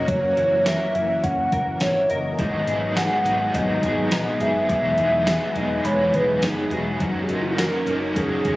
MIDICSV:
0, 0, Header, 1, 8, 480
1, 0, Start_track
1, 0, Key_signature, 5, "minor"
1, 0, Tempo, 576923
1, 67, Time_signature, 4, 2, 24, 8
1, 7124, End_track
2, 0, Start_track
2, 0, Title_t, "Celesta"
2, 0, Program_c, 0, 8
2, 3432, Note_on_c, 0, 82, 50
2, 4117, Note_off_c, 0, 82, 0
2, 4865, Note_on_c, 0, 83, 56
2, 5855, Note_off_c, 0, 83, 0
2, 7124, End_track
3, 0, Start_track
3, 0, Title_t, "Soft synth lead"
3, 0, Program_c, 1, 80
3, 67, Note_on_c, 1, 73, 112
3, 551, Note_on_c, 1, 76, 114
3, 563, Note_off_c, 1, 73, 0
3, 1028, Note_on_c, 1, 78, 107
3, 1041, Note_off_c, 1, 76, 0
3, 1515, Note_on_c, 1, 73, 101
3, 1527, Note_off_c, 1, 78, 0
3, 1742, Note_on_c, 1, 75, 112
3, 1755, Note_off_c, 1, 73, 0
3, 2471, Note_on_c, 1, 78, 111
3, 2483, Note_off_c, 1, 75, 0
3, 2952, Note_on_c, 1, 75, 102
3, 2964, Note_off_c, 1, 78, 0
3, 3667, Note_on_c, 1, 76, 118
3, 3680, Note_off_c, 1, 75, 0
3, 4633, Note_on_c, 1, 75, 94
3, 4645, Note_off_c, 1, 76, 0
3, 4870, Note_off_c, 1, 75, 0
3, 4877, Note_on_c, 1, 73, 96
3, 5118, Note_on_c, 1, 71, 89
3, 5131, Note_off_c, 1, 73, 0
3, 5361, Note_on_c, 1, 68, 94
3, 5373, Note_off_c, 1, 71, 0
3, 5600, Note_on_c, 1, 66, 96
3, 5612, Note_off_c, 1, 68, 0
3, 6020, Note_on_c, 1, 68, 71
3, 6032, Note_off_c, 1, 66, 0
3, 6099, Note_on_c, 1, 66, 74
3, 6112, Note_off_c, 1, 68, 0
3, 6170, Note_on_c, 1, 64, 76
3, 6183, Note_off_c, 1, 66, 0
3, 6244, Note_on_c, 1, 66, 79
3, 6257, Note_off_c, 1, 64, 0
3, 6318, Note_on_c, 1, 70, 94
3, 6330, Note_off_c, 1, 66, 0
3, 6795, Note_on_c, 1, 68, 95
3, 6807, Note_off_c, 1, 70, 0
3, 7124, Note_off_c, 1, 68, 0
3, 7124, End_track
4, 0, Start_track
4, 0, Title_t, "Clean electric guitar"
4, 0, Program_c, 2, 27
4, 0, Note_on_c, 2, 61, 64
4, 0, Note_on_c, 2, 63, 55
4, 0, Note_on_c, 2, 70, 68
4, 62, Note_on_c, 2, 54, 79
4, 112, Note_off_c, 2, 63, 0
4, 306, Note_on_c, 2, 64, 57
4, 331, Note_off_c, 2, 70, 0
4, 542, Note_on_c, 2, 70, 64
4, 774, Note_off_c, 2, 64, 0
4, 784, Note_on_c, 2, 64, 58
4, 1025, Note_off_c, 2, 61, 0
4, 1029, Note_on_c, 2, 61, 64
4, 1260, Note_off_c, 2, 70, 0
4, 1270, Note_on_c, 2, 70, 62
4, 1499, Note_off_c, 2, 64, 0
4, 1509, Note_on_c, 2, 64, 55
4, 1738, Note_off_c, 2, 70, 0
4, 1748, Note_on_c, 2, 70, 66
4, 2014, Note_off_c, 2, 54, 0
4, 2036, Note_off_c, 2, 61, 0
4, 2036, Note_off_c, 2, 64, 0
4, 2036, Note_off_c, 2, 70, 0
4, 7031, Note_on_c, 2, 68, 63
4, 7124, Note_off_c, 2, 68, 0
4, 7124, End_track
5, 0, Start_track
5, 0, Title_t, "Overdriven electric guitar"
5, 0, Program_c, 3, 29
5, 1989, Note_on_c, 3, 44, 70
5, 1994, Note_on_c, 3, 51, 74
5, 2001, Note_on_c, 3, 54, 72
5, 2006, Note_on_c, 3, 59, 74
5, 2010, Note_on_c, 3, 63, 82
5, 2018, Note_on_c, 3, 68, 82
5, 2208, Note_off_c, 3, 68, 0
5, 2218, Note_on_c, 3, 68, 57
5, 2226, Note_off_c, 3, 63, 0
5, 2228, Note_off_c, 3, 44, 0
5, 2231, Note_off_c, 3, 51, 0
5, 2234, Note_off_c, 3, 54, 0
5, 2236, Note_on_c, 3, 63, 51
5, 2237, Note_off_c, 3, 59, 0
5, 2246, Note_on_c, 3, 59, 43
5, 2262, Note_on_c, 3, 54, 45
5, 2442, Note_off_c, 3, 54, 0
5, 2452, Note_on_c, 3, 54, 57
5, 2461, Note_off_c, 3, 59, 0
5, 2463, Note_off_c, 3, 68, 0
5, 2471, Note_on_c, 3, 59, 61
5, 2472, Note_off_c, 3, 63, 0
5, 2481, Note_on_c, 3, 63, 58
5, 2494, Note_on_c, 3, 68, 61
5, 2684, Note_off_c, 3, 68, 0
5, 2694, Note_on_c, 3, 68, 50
5, 2700, Note_off_c, 3, 54, 0
5, 2701, Note_off_c, 3, 63, 0
5, 2709, Note_off_c, 3, 59, 0
5, 2711, Note_on_c, 3, 63, 47
5, 2725, Note_on_c, 3, 59, 45
5, 2735, Note_on_c, 3, 54, 44
5, 2933, Note_off_c, 3, 54, 0
5, 2936, Note_on_c, 3, 44, 69
5, 2939, Note_on_c, 3, 51, 73
5, 2941, Note_off_c, 3, 68, 0
5, 2943, Note_on_c, 3, 54, 83
5, 2945, Note_off_c, 3, 59, 0
5, 2949, Note_off_c, 3, 63, 0
5, 2955, Note_on_c, 3, 59, 83
5, 2958, Note_on_c, 3, 63, 89
5, 2964, Note_on_c, 3, 68, 80
5, 3164, Note_off_c, 3, 68, 0
5, 3174, Note_on_c, 3, 68, 52
5, 3182, Note_off_c, 3, 44, 0
5, 3183, Note_off_c, 3, 51, 0
5, 3183, Note_off_c, 3, 63, 0
5, 3185, Note_off_c, 3, 54, 0
5, 3191, Note_off_c, 3, 59, 0
5, 3193, Note_on_c, 3, 63, 53
5, 3200, Note_on_c, 3, 59, 48
5, 3216, Note_on_c, 3, 54, 44
5, 3398, Note_off_c, 3, 54, 0
5, 3408, Note_on_c, 3, 54, 57
5, 3416, Note_off_c, 3, 59, 0
5, 3421, Note_off_c, 3, 68, 0
5, 3426, Note_on_c, 3, 59, 61
5, 3428, Note_off_c, 3, 63, 0
5, 3438, Note_on_c, 3, 63, 62
5, 3453, Note_on_c, 3, 68, 61
5, 3644, Note_off_c, 3, 68, 0
5, 3654, Note_on_c, 3, 68, 52
5, 3658, Note_off_c, 3, 54, 0
5, 3661, Note_off_c, 3, 63, 0
5, 3667, Note_off_c, 3, 59, 0
5, 3671, Note_on_c, 3, 63, 50
5, 3682, Note_on_c, 3, 59, 41
5, 3694, Note_on_c, 3, 54, 40
5, 3892, Note_on_c, 3, 52, 70
5, 3897, Note_off_c, 3, 54, 0
5, 3899, Note_off_c, 3, 59, 0
5, 3900, Note_on_c, 3, 56, 70
5, 3901, Note_off_c, 3, 68, 0
5, 3904, Note_off_c, 3, 63, 0
5, 3908, Note_on_c, 3, 59, 81
5, 3914, Note_on_c, 3, 63, 73
5, 3921, Note_on_c, 3, 68, 84
5, 4116, Note_off_c, 3, 68, 0
5, 4126, Note_on_c, 3, 68, 55
5, 4140, Note_off_c, 3, 52, 0
5, 4141, Note_off_c, 3, 63, 0
5, 4144, Note_off_c, 3, 56, 0
5, 4148, Note_off_c, 3, 59, 0
5, 4151, Note_on_c, 3, 63, 49
5, 4166, Note_on_c, 3, 59, 44
5, 4362, Note_on_c, 3, 56, 64
5, 4371, Note_off_c, 3, 59, 0
5, 4377, Note_off_c, 3, 68, 0
5, 4381, Note_on_c, 3, 59, 71
5, 4382, Note_off_c, 3, 63, 0
5, 4392, Note_on_c, 3, 63, 70
5, 4406, Note_on_c, 3, 68, 70
5, 4599, Note_off_c, 3, 68, 0
5, 4609, Note_on_c, 3, 68, 54
5, 4615, Note_off_c, 3, 56, 0
5, 4624, Note_off_c, 3, 59, 0
5, 4625, Note_off_c, 3, 63, 0
5, 4635, Note_on_c, 3, 63, 52
5, 4656, Note_on_c, 3, 59, 47
5, 4853, Note_on_c, 3, 52, 73
5, 4858, Note_off_c, 3, 59, 0
5, 4858, Note_off_c, 3, 68, 0
5, 4860, Note_on_c, 3, 56, 78
5, 4864, Note_off_c, 3, 63, 0
5, 4868, Note_on_c, 3, 59, 81
5, 4874, Note_on_c, 3, 63, 85
5, 4879, Note_on_c, 3, 68, 86
5, 5079, Note_off_c, 3, 68, 0
5, 5089, Note_on_c, 3, 68, 57
5, 5100, Note_off_c, 3, 52, 0
5, 5104, Note_off_c, 3, 56, 0
5, 5104, Note_off_c, 3, 63, 0
5, 5108, Note_off_c, 3, 59, 0
5, 5114, Note_on_c, 3, 63, 53
5, 5134, Note_on_c, 3, 59, 42
5, 5328, Note_on_c, 3, 56, 62
5, 5334, Note_off_c, 3, 59, 0
5, 5339, Note_off_c, 3, 68, 0
5, 5344, Note_on_c, 3, 59, 57
5, 5345, Note_off_c, 3, 63, 0
5, 5355, Note_on_c, 3, 63, 60
5, 5369, Note_on_c, 3, 68, 67
5, 5568, Note_off_c, 3, 68, 0
5, 5578, Note_off_c, 3, 56, 0
5, 5578, Note_on_c, 3, 68, 50
5, 5586, Note_off_c, 3, 59, 0
5, 5587, Note_off_c, 3, 63, 0
5, 5597, Note_on_c, 3, 63, 42
5, 5615, Note_on_c, 3, 59, 42
5, 5822, Note_on_c, 3, 54, 81
5, 5823, Note_off_c, 3, 68, 0
5, 5827, Note_off_c, 3, 63, 0
5, 5829, Note_on_c, 3, 61, 77
5, 5834, Note_off_c, 3, 59, 0
5, 5837, Note_on_c, 3, 63, 82
5, 5844, Note_on_c, 3, 70, 78
5, 6036, Note_off_c, 3, 70, 0
5, 6046, Note_on_c, 3, 70, 54
5, 6061, Note_off_c, 3, 63, 0
5, 6065, Note_off_c, 3, 54, 0
5, 6068, Note_off_c, 3, 61, 0
5, 6071, Note_on_c, 3, 63, 52
5, 6090, Note_on_c, 3, 61, 42
5, 6296, Note_on_c, 3, 54, 63
5, 6297, Note_off_c, 3, 61, 0
5, 6297, Note_off_c, 3, 70, 0
5, 6307, Note_on_c, 3, 61, 65
5, 6309, Note_off_c, 3, 63, 0
5, 6321, Note_on_c, 3, 63, 64
5, 6334, Note_on_c, 3, 70, 67
5, 6535, Note_off_c, 3, 70, 0
5, 6542, Note_off_c, 3, 54, 0
5, 6545, Note_on_c, 3, 70, 54
5, 6547, Note_off_c, 3, 61, 0
5, 6554, Note_off_c, 3, 63, 0
5, 6564, Note_on_c, 3, 63, 52
5, 6583, Note_on_c, 3, 61, 47
5, 6781, Note_off_c, 3, 61, 0
5, 6782, Note_on_c, 3, 54, 75
5, 6786, Note_off_c, 3, 70, 0
5, 6790, Note_off_c, 3, 63, 0
5, 6791, Note_on_c, 3, 61, 81
5, 6800, Note_on_c, 3, 63, 81
5, 6809, Note_on_c, 3, 70, 82
5, 7011, Note_off_c, 3, 70, 0
5, 7021, Note_on_c, 3, 70, 59
5, 7025, Note_off_c, 3, 54, 0
5, 7029, Note_off_c, 3, 61, 0
5, 7034, Note_off_c, 3, 63, 0
5, 7044, Note_on_c, 3, 63, 46
5, 7064, Note_on_c, 3, 61, 47
5, 7124, Note_off_c, 3, 61, 0
5, 7124, Note_off_c, 3, 63, 0
5, 7124, Note_off_c, 3, 70, 0
5, 7124, End_track
6, 0, Start_track
6, 0, Title_t, "String machine"
6, 0, Program_c, 4, 50
6, 0, Note_on_c, 4, 58, 65
6, 0, Note_on_c, 4, 61, 64
6, 0, Note_on_c, 4, 66, 87
6, 65, Note_on_c, 4, 52, 76
6, 1953, Note_off_c, 4, 61, 0
6, 1957, Note_off_c, 4, 58, 0
6, 1967, Note_off_c, 4, 52, 0
6, 1981, Note_on_c, 4, 54, 72
6, 1985, Note_on_c, 4, 56, 65
6, 1985, Note_on_c, 4, 59, 69
6, 3874, Note_off_c, 4, 66, 0
6, 3909, Note_on_c, 4, 52, 84
6, 5793, Note_off_c, 4, 56, 0
6, 5793, Note_off_c, 4, 59, 0
6, 5809, Note_off_c, 4, 52, 0
6, 5830, Note_on_c, 4, 61, 70
6, 5835, Note_on_c, 4, 58, 73
6, 5835, Note_on_c, 4, 66, 85
6, 7124, Note_off_c, 4, 54, 0
6, 7124, Note_off_c, 4, 58, 0
6, 7124, Note_off_c, 4, 61, 0
6, 7124, Note_off_c, 4, 66, 0
6, 7124, End_track
7, 0, Start_track
7, 0, Title_t, "Fretless electric bass"
7, 0, Program_c, 5, 35
7, 68, Note_on_c, 5, 30, 88
7, 279, Note_off_c, 5, 30, 0
7, 312, Note_on_c, 5, 30, 87
7, 627, Note_off_c, 5, 30, 0
7, 790, Note_on_c, 5, 30, 91
7, 1000, Note_off_c, 5, 30, 0
7, 1027, Note_on_c, 5, 30, 93
7, 1238, Note_off_c, 5, 30, 0
7, 1268, Note_on_c, 5, 30, 99
7, 1479, Note_off_c, 5, 30, 0
7, 1502, Note_on_c, 5, 32, 91
7, 1716, Note_off_c, 5, 32, 0
7, 1750, Note_on_c, 5, 30, 80
7, 1960, Note_off_c, 5, 30, 0
7, 1986, Note_on_c, 5, 32, 90
7, 2198, Note_off_c, 5, 32, 0
7, 2224, Note_on_c, 5, 32, 94
7, 2542, Note_off_c, 5, 32, 0
7, 2705, Note_on_c, 5, 32, 98
7, 2917, Note_off_c, 5, 32, 0
7, 2946, Note_on_c, 5, 32, 96
7, 3158, Note_off_c, 5, 32, 0
7, 3184, Note_on_c, 5, 32, 83
7, 3397, Note_off_c, 5, 32, 0
7, 3421, Note_on_c, 5, 34, 81
7, 3635, Note_off_c, 5, 34, 0
7, 3665, Note_on_c, 5, 30, 87
7, 3877, Note_off_c, 5, 30, 0
7, 3905, Note_on_c, 5, 28, 87
7, 4117, Note_off_c, 5, 28, 0
7, 4143, Note_on_c, 5, 28, 93
7, 4462, Note_off_c, 5, 28, 0
7, 4621, Note_on_c, 5, 28, 95
7, 4835, Note_off_c, 5, 28, 0
7, 4857, Note_on_c, 5, 28, 100
7, 5073, Note_off_c, 5, 28, 0
7, 5108, Note_on_c, 5, 28, 95
7, 5319, Note_off_c, 5, 28, 0
7, 5341, Note_on_c, 5, 30, 84
7, 5555, Note_off_c, 5, 30, 0
7, 5577, Note_on_c, 5, 28, 93
7, 5793, Note_off_c, 5, 28, 0
7, 5826, Note_on_c, 5, 30, 93
7, 6038, Note_off_c, 5, 30, 0
7, 6068, Note_on_c, 5, 30, 86
7, 6385, Note_off_c, 5, 30, 0
7, 6542, Note_on_c, 5, 30, 95
7, 6756, Note_off_c, 5, 30, 0
7, 6787, Note_on_c, 5, 30, 100
7, 6999, Note_off_c, 5, 30, 0
7, 7032, Note_on_c, 5, 30, 85
7, 7124, Note_off_c, 5, 30, 0
7, 7124, End_track
8, 0, Start_track
8, 0, Title_t, "Drums"
8, 67, Note_on_c, 9, 36, 94
8, 67, Note_on_c, 9, 42, 55
8, 150, Note_off_c, 9, 36, 0
8, 151, Note_off_c, 9, 42, 0
8, 309, Note_on_c, 9, 42, 50
8, 393, Note_off_c, 9, 42, 0
8, 549, Note_on_c, 9, 38, 100
8, 550, Note_on_c, 9, 54, 59
8, 553, Note_on_c, 9, 42, 81
8, 632, Note_off_c, 9, 38, 0
8, 633, Note_off_c, 9, 54, 0
8, 636, Note_off_c, 9, 42, 0
8, 790, Note_on_c, 9, 42, 49
8, 874, Note_off_c, 9, 42, 0
8, 1029, Note_on_c, 9, 36, 89
8, 1030, Note_on_c, 9, 42, 73
8, 1112, Note_off_c, 9, 36, 0
8, 1113, Note_off_c, 9, 42, 0
8, 1267, Note_on_c, 9, 36, 85
8, 1267, Note_on_c, 9, 42, 47
8, 1350, Note_off_c, 9, 42, 0
8, 1351, Note_off_c, 9, 36, 0
8, 1500, Note_on_c, 9, 42, 72
8, 1504, Note_on_c, 9, 54, 55
8, 1505, Note_on_c, 9, 38, 113
8, 1583, Note_off_c, 9, 42, 0
8, 1587, Note_off_c, 9, 54, 0
8, 1588, Note_off_c, 9, 38, 0
8, 1745, Note_on_c, 9, 42, 46
8, 1828, Note_off_c, 9, 42, 0
8, 1986, Note_on_c, 9, 42, 63
8, 1987, Note_on_c, 9, 36, 101
8, 2069, Note_off_c, 9, 42, 0
8, 2070, Note_off_c, 9, 36, 0
8, 2225, Note_on_c, 9, 42, 53
8, 2308, Note_off_c, 9, 42, 0
8, 2469, Note_on_c, 9, 38, 97
8, 2470, Note_on_c, 9, 54, 55
8, 2473, Note_on_c, 9, 42, 77
8, 2552, Note_off_c, 9, 38, 0
8, 2553, Note_off_c, 9, 54, 0
8, 2556, Note_off_c, 9, 42, 0
8, 2710, Note_on_c, 9, 42, 52
8, 2794, Note_off_c, 9, 42, 0
8, 2947, Note_on_c, 9, 36, 80
8, 2951, Note_on_c, 9, 42, 73
8, 3030, Note_off_c, 9, 36, 0
8, 3034, Note_off_c, 9, 42, 0
8, 3187, Note_on_c, 9, 36, 81
8, 3187, Note_on_c, 9, 42, 49
8, 3270, Note_off_c, 9, 36, 0
8, 3270, Note_off_c, 9, 42, 0
8, 3422, Note_on_c, 9, 42, 66
8, 3426, Note_on_c, 9, 38, 112
8, 3426, Note_on_c, 9, 54, 56
8, 3505, Note_off_c, 9, 42, 0
8, 3509, Note_off_c, 9, 54, 0
8, 3510, Note_off_c, 9, 38, 0
8, 3665, Note_on_c, 9, 42, 47
8, 3748, Note_off_c, 9, 42, 0
8, 3905, Note_on_c, 9, 36, 96
8, 3907, Note_on_c, 9, 42, 57
8, 3988, Note_off_c, 9, 36, 0
8, 3990, Note_off_c, 9, 42, 0
8, 4141, Note_on_c, 9, 42, 49
8, 4224, Note_off_c, 9, 42, 0
8, 4384, Note_on_c, 9, 38, 102
8, 4385, Note_on_c, 9, 54, 58
8, 4389, Note_on_c, 9, 42, 77
8, 4468, Note_off_c, 9, 38, 0
8, 4469, Note_off_c, 9, 54, 0
8, 4472, Note_off_c, 9, 42, 0
8, 4623, Note_on_c, 9, 42, 46
8, 4706, Note_off_c, 9, 42, 0
8, 4866, Note_on_c, 9, 42, 71
8, 4949, Note_off_c, 9, 42, 0
8, 5106, Note_on_c, 9, 36, 80
8, 5107, Note_on_c, 9, 42, 52
8, 5190, Note_off_c, 9, 36, 0
8, 5191, Note_off_c, 9, 42, 0
8, 5343, Note_on_c, 9, 42, 68
8, 5347, Note_on_c, 9, 38, 115
8, 5347, Note_on_c, 9, 54, 54
8, 5426, Note_off_c, 9, 42, 0
8, 5430, Note_off_c, 9, 38, 0
8, 5430, Note_off_c, 9, 54, 0
8, 5584, Note_on_c, 9, 42, 47
8, 5668, Note_off_c, 9, 42, 0
8, 5826, Note_on_c, 9, 42, 61
8, 5828, Note_on_c, 9, 36, 97
8, 5910, Note_off_c, 9, 42, 0
8, 5911, Note_off_c, 9, 36, 0
8, 6064, Note_on_c, 9, 42, 51
8, 6147, Note_off_c, 9, 42, 0
8, 6310, Note_on_c, 9, 38, 102
8, 6311, Note_on_c, 9, 54, 59
8, 6314, Note_on_c, 9, 42, 78
8, 6393, Note_off_c, 9, 38, 0
8, 6394, Note_off_c, 9, 54, 0
8, 6397, Note_off_c, 9, 42, 0
8, 6548, Note_on_c, 9, 42, 50
8, 6631, Note_off_c, 9, 42, 0
8, 6790, Note_on_c, 9, 36, 80
8, 6791, Note_on_c, 9, 42, 74
8, 6873, Note_off_c, 9, 36, 0
8, 6874, Note_off_c, 9, 42, 0
8, 7028, Note_on_c, 9, 42, 50
8, 7030, Note_on_c, 9, 36, 75
8, 7112, Note_off_c, 9, 42, 0
8, 7114, Note_off_c, 9, 36, 0
8, 7124, End_track
0, 0, End_of_file